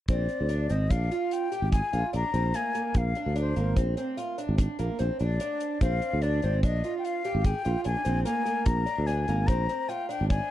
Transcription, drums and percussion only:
0.08 kick, closed hi-hat
0.29 closed hi-hat
0.49 closed hi-hat
0.69 closed hi-hat
0.90 kick, closed hi-hat
1.12 closed hi-hat
1.31 closed hi-hat
1.52 closed hi-hat
1.72 kick, closed hi-hat
1.93 closed hi-hat
2.14 closed hi-hat
2.34 closed hi-hat
2.54 closed hi-hat
2.75 closed hi-hat
2.94 kick, closed hi-hat
3.15 closed hi-hat
3.36 closed hi-hat
3.56 closed hi-hat
3.76 kick, closed hi-hat
3.97 closed hi-hat
4.18 closed hi-hat
4.38 closed hi-hat
4.58 kick, closed hi-hat
4.79 closed hi-hat
4.99 closed hi-hat
5.19 closed hi-hat
5.40 closed hi-hat
5.60 closed hi-hat
5.81 kick, closed hi-hat
6.02 closed hi-hat
6.22 closed hi-hat
6.42 closed hi-hat
6.63 kick, closed hi-hat
6.84 closed hi-hat
7.05 closed hi-hat
7.24 closed hi-hat
7.44 kick, closed hi-hat
7.65 closed hi-hat
7.84 closed hi-hat
8.05 closed hi-hat
8.25 closed hi-hat
8.46 closed hi-hat
8.66 kick, closed hi-hat
8.87 closed hi-hat
9.07 closed hi-hat
9.28 closed hi-hat
9.48 kick, closed hi-hat
9.69 closed hi-hat
9.89 closed hi-hat
10.10 closed hi-hat
10.30 kick, closed hi-hat

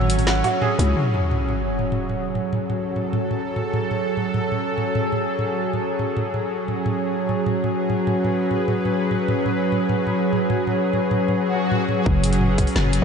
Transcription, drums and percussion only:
0.01 mid tom
0.10 closed hi-hat
0.19 mid tom, open hi-hat
0.27 snare
0.44 mid tom, open hi-hat
0.62 mid tom
0.79 closed hi-hat, mid tom
1.14 mid tom
1.31 mid tom
1.49 mid tom
1.79 mid tom
1.92 mid tom
2.09 mid tom
2.35 mid tom
2.53 mid tom
2.70 mid tom
2.96 mid tom
3.13 mid tom
3.31 mid tom
3.56 mid tom
3.74 mid tom
3.91 mid tom
4.17 mid tom
4.34 mid tom
4.52 mid tom
4.78 mid tom
4.95 mid tom
5.12 mid tom
5.39 mid tom
5.74 mid tom
5.99 mid tom
6.17 mid tom
6.34 mid tom
6.68 mid tom
6.86 mid tom
7.29 mid tom
7.46 mid tom
7.64 mid tom
7.90 mid tom
8.07 mid tom
8.25 mid tom
8.51 mid tom
8.68 mid tom
8.85 mid tom
9.11 mid tom
9.28 mid tom
9.46 mid tom
9.72 mid tom
9.89 mid tom
10.07 mid tom
10.33 mid tom
10.50 mid tom
10.67 mid tom
10.93 mid tom
11.11 mid tom
11.28 mid tom
11.72 mid tom
11.89 mid tom
12.06 kick
12.24 closed hi-hat, mid tom
12.33 closed hi-hat
12.41 mid tom
12.58 kick, closed hi-hat, mid tom
12.67 open hi-hat
12.76 snare
12.85 mid tom
12.93 closed hi-hat

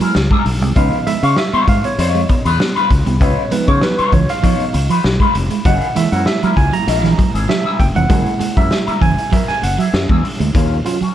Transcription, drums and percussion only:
0.01 closed hi-hat
0.15 snare
0.31 kick
0.46 open hi-hat
0.62 closed hi-hat
0.76 kick, closed hi-hat
0.92 closed hi-hat
1.07 closed hi-hat
1.23 closed hi-hat
1.36 snare
1.53 closed hi-hat
1.68 kick, closed hi-hat
1.84 closed hi-hat
1.99 closed hi-hat
2.15 closed hi-hat
2.29 kick, closed hi-hat
2.45 closed hi-hat
2.60 snare
2.76 closed hi-hat
2.90 kick, closed hi-hat
3.07 closed hi-hat
3.21 kick, closed hi-hat
3.52 closed hi-hat
3.68 kick, closed hi-hat
3.81 snare
3.98 closed hi-hat
4.12 kick, closed hi-hat
4.29 snare, closed hi-hat
4.44 kick, closed hi-hat
4.60 closed hi-hat
4.74 closed hi-hat
4.90 closed hi-hat
5.04 snare
5.20 kick, closed hi-hat
5.35 closed hi-hat
5.50 closed hi-hat
5.65 kick, closed hi-hat
5.81 closed hi-hat
5.96 closed hi-hat
6.13 closed hi-hat
6.26 snare
6.43 closed hi-hat
6.57 kick, closed hi-hat
6.73 closed hi-hat
6.88 closed hi-hat
7.04 snare, closed hi-hat
7.19 kick, closed hi-hat
7.35 closed hi-hat
7.49 snare
7.80 kick, closed hi-hat
7.96 closed hi-hat
8.10 kick, closed hi-hat
8.26 closed hi-hat
8.41 closed hi-hat
8.57 kick, closed hi-hat
8.71 snare
8.88 closed hi-hat
9.02 kick, closed hi-hat
9.18 closed hi-hat
9.33 kick, closed hi-hat
9.49 snare, closed hi-hat
9.63 closed hi-hat
9.80 closed hi-hat
9.94 snare
10.09 kick
10.25 open hi-hat
10.41 closed hi-hat
10.55 kick, closed hi-hat
10.86 closed hi-hat
11.02 closed hi-hat

